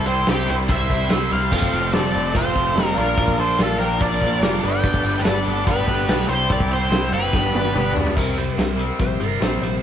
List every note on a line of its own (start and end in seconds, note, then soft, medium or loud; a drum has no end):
0.00 0.23 C2 loud
0.00 0.26 C3 loud
0.00 1.50 G3 medium
0.00 0.15 C4 medium
0.00 1.50 C4 medium
0.00 0.15 E4 medium
0.00 1.50 E4 medium
0.00 0.16 G4 medium
0.00 0.16 C5 loud
0.00 1.50 C5 medium
0.06 0.26 G3 medium
0.06 0.28 C4 medium
0.06 0.28 E4 medium
0.06 0.27 G4 medium
0.06 0.28 C5 medium
0.06 open hi-hat medium
0.26 0.46 C2 medium
0.26 0.67 C3 loud
0.26 0.49 G3 medium
0.26 0.60 C4 medium
0.26 0.48 C4 loud
0.26 0.48 C4 medium
0.26 0.60 E4 medium
0.26 0.46 E4 loud
0.26 0.61 G4 medium
0.26 0.49 G4 medium
0.26 0.61 C5 medium
0.26 snare loud
0.26 open hi-hat medium
0.47 0.67 C2 loud
0.47 0.68 G3 medium
0.47 0.68 C4 medium
0.47 0.69 E4 medium
0.47 0.55 G4 medium
0.47 0.54 C5 loud
0.47 open hi-hat medium
0.68 0.88 C2 medium
0.68 0.91 C3 medium
0.68 0.89 G3 medium
0.68 0.85 C4 medium
0.68 0.89 C4 medium
0.68 0.85 E4 medium
0.68 0.88 E4 medium
0.68 0.86 G4 medium
0.68 0.86 C5 medium
0.68 1.08 C5 medium
0.68 1.09 E5 loud
0.68 kick loud
0.68 open hi-hat medium
0.89 1.08 C2 medium
0.89 1.09 C3 medium
0.89 1.10 G3 medium
0.89 1.06 C4 medium
0.89 1.11 C4 medium
0.89 1.12 E4 medium
0.89 1.06 E4 medium
0.89 1.06 G4 medium
0.89 1.07 C5 medium
0.89 kick medium
0.89 open hi-hat medium
1.08 1.50 C3 medium
1.08 1.33 G3 medium
1.08 1.42 C4 medium
1.08 1.42 E4 medium
1.08 1.43 G4 medium
1.08 1.43 C5 medium
1.08 1.29 C5 medium
1.08 1.32 E5 loud
1.08 snare loud
1.08 open hi-hat medium
1.12 1.30 C2 loud
1.12 1.32 C4 medium
1.12 1.30 E4 medium
1.31 1.50 C2 loud
1.31 1.52 G3 medium
1.31 1.52 C4 medium
1.31 1.51 E4 medium
1.31 1.90 C5 medium
1.31 1.93 F5 loud
1.31 snare soft
1.31 open hi-hat medium
1.51 1.71 F1 medium
1.51 1.92 F2 loud
1.51 1.93 C3 loud
1.51 1.75 F3 loud
1.51 1.73 A3 loud
1.51 1.66 A#3 medium
1.51 1.85 C4 medium
1.51 1.71 C4 loud
1.51 1.66 C#4 medium
1.51 1.85 F4 medium
1.51 1.66 F#4 medium
1.51 1.85 A4 medium
1.51 1.85 C5 medium
1.51 1.66 C#5 medium
1.51 kick loud
1.51 crash loud
1.62 kick medium
1.67 2.96 A3 medium
1.67 2.96 C4 medium
1.67 2.96 F4 medium
1.67 2.97 C5 medium
1.73 1.92 F1 loud
1.73 1.94 F3 medium
1.73 1.94 A3 medium
1.73 1.95 C4 medium
1.73 open hi-hat medium
1.93 2.13 F1 loud
1.93 2.35 F2 loud
1.93 2.32 C3 medium
1.93 2.15 F3 loud
1.93 2.14 A3 loud
1.93 2.26 C4 medium
1.93 2.12 C4 loud
1.93 2.27 F4 medium
1.93 2.32 A4 medium
1.93 2.27 A4 medium
1.93 2.27 C5 medium
1.93 2.36 D5 loud
1.93 snare loud
1.93 open hi-hat medium
2.13 2.33 F1 loud
2.13 2.33 F3 medium
2.13 2.34 A3 medium
2.13 2.35 C4 medium
2.13 open hi-hat medium
2.33 2.72 F1 medium
2.33 2.95 F2 loud
2.33 2.55 C3 medium
2.33 2.55 F3 medium
2.33 2.54 A3 medium
2.33 2.50 C4 medium
2.33 2.53 C4 medium
2.33 2.51 F4 medium
2.33 2.79 F4 medium
2.33 2.51 A4 medium
2.33 2.51 C5 medium
2.33 2.84 C5 loud
2.33 kick loud
2.33 open hi-hat medium
2.54 2.97 F2 medium
2.54 2.74 C3 medium
2.54 2.76 F3 medium
2.54 2.76 A3 medium
2.54 2.71 C4 medium
2.54 2.77 C4 medium
2.54 2.71 F4 medium
2.54 2.72 A4 medium
2.54 2.72 C5 medium
2.54 kick medium
2.54 open hi-hat medium
2.74 2.95 F1 medium
2.74 2.95 C3 medium
2.74 2.96 F3 medium
2.74 2.96 A3 medium
2.74 2.96 C4 medium
2.74 2.93 F4 medium
2.74 2.96 A4 medium
2.74 2.97 C5 medium
2.74 snare loud
2.74 open hi-hat medium
2.78 2.95 C4 medium
2.78 2.93 D#4 medium
2.84 2.98 A#4 loud
2.94 3.16 A#1 medium
2.94 3.16 F3 medium
2.94 3.17 A#3 medium
2.94 4.62 A#3 medium
2.94 3.45 D4 medium
2.94 3.18 D4 medium
2.94 4.62 D4 medium
2.94 3.46 F4 medium
2.94 3.35 F4 medium
2.94 3.46 A#4 medium
2.94 3.46 D5 loud
2.94 4.62 D5 medium
2.94 snare soft
2.94 open hi-hat medium
2.99 3.15 A#2 medium
2.99 4.62 F4 medium
2.99 3.40 A#4 loud
3.17 3.55 A#1 loud
3.17 3.58 A#2 medium
3.17 3.39 F3 loud
3.17 3.38 A#3 loud
3.17 3.37 D4 loud
3.17 kick loud
3.17 open hi-hat medium
3.28 kick medium
3.37 3.58 F3 medium
3.37 3.60 A#3 medium
3.37 3.61 D4 medium
3.37 3.58 A4 medium
3.37 3.61 C5 medium
3.37 open hi-hat medium
3.56 3.78 A#1 loud
3.56 3.98 A#2 medium
3.56 3.80 F3 loud
3.56 3.91 D4 medium
3.56 3.91 F4 medium
3.56 3.78 F4 medium
3.56 3.92 A#4 medium
3.56 3.92 D5 medium
3.56 snare loud
3.56 open hi-hat medium
3.61 3.79 A#3 loud
3.61 3.78 D4 loud
3.61 3.78 A4 medium
3.78 3.98 A#1 loud
3.78 3.99 F3 medium
3.78 4.00 A#3 medium
3.78 4.01 D4 medium
3.78 3.99 G4 medium
3.78 4.01 A#4 loud
3.78 open hi-hat medium
3.99 4.19 A#1 loud
3.99 4.20 A#2 medium
3.99 4.20 F3 medium
3.99 4.19 A#3 medium
3.99 4.17 D4 medium
3.99 4.18 D4 medium
3.99 4.17 F4 medium
3.99 4.39 A#4 medium
3.99 4.17 A#4 medium
3.99 4.17 D5 medium
3.99 4.42 D5 loud
3.99 kick loud
3.99 open hi-hat loud
4.19 4.41 A#1 loud
4.19 4.39 A#2 medium
4.19 4.41 F3 medium
4.19 4.41 A#3 medium
4.19 4.37 D4 medium
4.19 4.42 D4 medium
4.19 4.37 F4 medium
4.19 4.37 A#4 medium
4.19 4.38 D5 medium
4.19 kick medium
4.19 open hi-hat medium
4.40 4.60 F1 loud
4.40 4.61 A#2 medium
4.40 4.61 F3 medium
4.40 4.61 A#3 medium
4.40 4.61 D4 medium
4.40 4.59 D4 medium
4.40 4.62 F4 medium
4.40 4.60 A#4 medium
4.40 4.62 A#4 medium
4.40 4.63 D5 medium
4.40 4.64 D5 medium
4.40 snare loud
4.40 open hi-hat medium
4.60 4.82 G1 medium
4.60 4.80 G2 medium
4.60 4.82 D3 medium
4.60 4.83 G3 medium
4.60 6.27 A3 medium
4.60 4.82 B3 medium
4.60 4.83 D4 medium
4.60 5.12 D4 medium
4.60 6.27 D4 medium
4.60 5.13 G4 medium
4.60 6.27 G4 medium
4.60 5.13 A4 medium
4.60 6.27 B4 medium
4.60 5.13 B4 loud
4.60 5.13 D5 loud
4.60 snare soft
4.60 open hi-hat medium
4.65 5.21 G5 loud
4.81 5.03 G1 loud
4.81 5.22 G2 medium
4.81 5.23 D3 medium
4.81 5.05 G3 loud
4.81 5.03 B3 loud
4.81 5.01 D4 loud
4.81 kick loud
4.81 open hi-hat loud
4.94 kick loud
5.02 5.22 G1 medium
5.02 5.25 G3 medium
5.02 5.25 B3 medium
5.02 5.25 D4 medium
5.02 open hi-hat medium
5.18 5.24 G4 medium
5.18 5.26 B4 medium
5.24 5.44 G1 loud
5.24 5.66 G2 medium
5.24 5.64 D3 loud
5.24 5.48 G3 medium
5.24 5.45 B3 loud
5.24 5.58 D4 medium
5.24 5.43 D4 loud
5.24 5.58 G4 medium
5.24 5.63 A4 medium
5.24 5.58 A4 medium
5.24 5.58 B4 medium
5.24 5.69 D5 medium
5.24 snare loud
5.24 open hi-hat medium
5.45 5.65 G1 loud
5.45 5.66 G3 medium
5.45 5.66 B3 medium
5.45 5.66 D4 medium
5.45 open hi-hat medium
5.65 6.04 G1 medium
5.65 6.27 G2 medium
5.65 5.87 D3 medium
5.65 5.88 G3 medium
5.65 5.86 B3 medium
5.65 5.83 D4 medium
5.65 5.85 D4 medium
5.65 5.83 G4 medium
5.65 6.25 G4 medium
5.65 5.83 A4 medium
5.65 5.84 B4 medium
5.65 6.25 B4 loud
5.65 kick loud
5.65 open hi-hat medium
5.86 6.29 G2 medium
5.86 6.05 D3 medium
5.86 6.07 G3 medium
5.86 6.07 B3 medium
5.86 6.03 D4 medium
5.86 6.08 D4 medium
5.86 6.04 G4 medium
5.86 6.04 A4 medium
5.86 6.04 B4 medium
5.86 kick medium
5.86 open hi-hat medium
6.07 6.27 B1 medium
6.07 6.27 D3 medium
6.07 6.28 G3 medium
6.07 6.27 B3 medium
6.07 6.28 D4 medium
6.07 6.26 D4 medium
6.07 6.27 G4 medium
6.07 6.29 A4 medium
6.07 6.29 B4 medium
6.07 snare loud
6.07 open hi-hat medium
6.26 6.47 C2 loud
6.26 6.46 C3 medium
6.26 6.48 G3 medium
6.26 7.32 G3 medium
6.26 6.49 C4 medium
6.26 7.31 C4 medium
6.26 6.78 C4 medium
6.26 6.49 E4 medium
6.26 6.78 E4 medium
6.26 7.32 E4 medium
6.26 6.79 G4 medium
6.26 6.48 G4 medium
6.26 7.32 C5 medium
6.26 6.79 C5 medium
6.26 6.51 C5 medium
6.26 open hi-hat medium
6.47 6.87 C2 medium
6.47 6.88 C3 loud
6.47 6.70 G3 loud
6.47 6.69 C4 loud
6.47 6.67 E4 loud
6.47 kick loud
6.47 open hi-hat medium
6.52 6.69 G4 medium
6.52 6.70 D5 loud
6.60 kick loud
6.68 6.89 G3 medium
6.68 6.90 C4 medium
6.68 6.91 E4 medium
6.68 7.09 G4 medium
6.68 open hi-hat medium
6.73 7.14 C5 medium
6.89 7.09 C2 loud
6.89 7.31 C3 loud
6.89 7.12 G3 loud
6.89 7.25 C4 medium
6.89 7.11 C4 loud
6.89 7.25 E4 medium
6.89 7.10 E4 loud
6.89 7.25 G4 medium
6.89 7.25 C5 medium
6.89 snare loud
6.89 open hi-hat medium
7.11 7.31 F#1 medium
7.11 7.31 G3 medium
7.11 7.32 C4 medium
7.11 7.31 E4 medium
7.11 7.92 G4 medium
7.11 7.92 B4 medium
7.11 open hi-hat medium
7.31 7.52 G1 loud
7.31 7.54 G2 medium
7.31 7.53 D3 medium
7.31 7.53 G3 loud
7.31 8.16 G3 medium
7.31 7.49 B3 medium
7.31 7.52 B3 loud
7.31 8.16 B3 medium
7.31 7.49 D4 medium
7.31 8.16 D4 medium
7.31 7.51 D4 loud
7.31 7.50 G4 medium
7.31 8.15 B4 medium
7.31 7.50 B4 medium
7.31 kick loud
7.31 snare medium
7.52 7.73 G1 loud
7.52 7.96 G2 medium
7.52 7.71 D3 medium
7.52 7.73 G3 medium
7.52 7.74 B3 medium
7.52 7.70 B3 medium
7.52 7.74 D4 medium
7.52 7.70 D4 medium
7.52 7.70 G4 medium
7.52 7.71 B4 medium
7.52 high tom medium
7.65 high tom medium
7.72 7.93 G1 medium
7.72 8.14 D3 medium
7.72 7.96 G3 medium
7.72 8.07 B3 medium
7.72 7.94 B3 medium
7.72 8.08 D4 medium
7.72 7.93 D4 medium
7.72 8.08 G4 medium
7.72 8.08 B4 loud
7.72 mid tom medium
7.94 8.17 D2 medium
7.94 8.16 G3 medium
7.94 8.15 B3 medium
7.94 8.14 D4 medium
7.94 floor tom loud
8.07 floor tom loud
8.15 8.48 C2 medium
8.15 9.19 C3 medium
8.15 9.20 G3 medium
8.15 9.19 C4 loud
8.15 8.49 E4 medium
8.15 8.50 G4 medium
8.15 8.37 A#4 medium
8.15 8.50 C5 medium
8.15 kick loud
8.15 crash loud
8.37 8.56 C3 medium
8.37 8.56 G3 medium
8.37 8.57 C5 medium
8.37 closed hi-hat medium
8.57 8.90 C2 medium
8.57 8.75 C3 medium
8.57 8.76 G3 medium
8.57 8.91 E4 medium
8.57 8.91 G4 medium
8.57 8.98 A#4 medium
8.57 8.92 C5 loud
8.57 snare loud
8.57 closed hi-hat medium
8.76 8.97 C3 medium
8.76 8.97 G3 loud
8.76 8.98 C4 medium
8.76 closed hi-hat medium
8.98 9.16 A#1 medium
8.98 9.18 C3 medium
8.98 9.18 G3 medium
8.98 9.32 E4 medium
8.98 9.32 G4 medium
8.98 9.33 C5 loud
8.98 9.21 C5 loud
8.98 kick loud
8.98 closed hi-hat medium
9.20 9.37 G1 medium
9.20 9.39 C3 medium
9.20 9.41 G3 medium
9.20 9.40 C4 medium
9.20 9.40 A#4 medium
9.20 closed hi-hat medium
9.39 9.57 A#1 medium
9.39 9.80 C3 medium
9.39 9.82 G3 medium
9.39 9.73 E4 medium
9.39 9.74 G4 medium
9.39 9.74 C5 loud
9.39 9.61 C5 medium
9.39 snare loud
9.39 closed hi-hat medium
9.43 9.82 C4 medium
9.62 9.78 A#1 medium
9.62 9.81 C3 medium
9.62 9.82 G3 medium
9.62 9.82 C5 medium
9.62 closed hi-hat medium